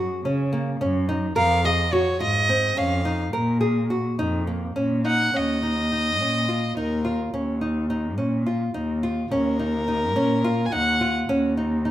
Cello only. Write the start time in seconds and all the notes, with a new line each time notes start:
0.24 C#3
0.80 F#2
1.37 F2
2.21 G#2
2.78 F2
3.34 A#2
4.18 F2
4.76 A#2
5.34 D#2
6.21 A#2
6.77 D#2
7.34 D#2
8.18 A#2
8.74 D#2
9.31 D#2
10.16 A#2
10.73 D#2
11.29 D#2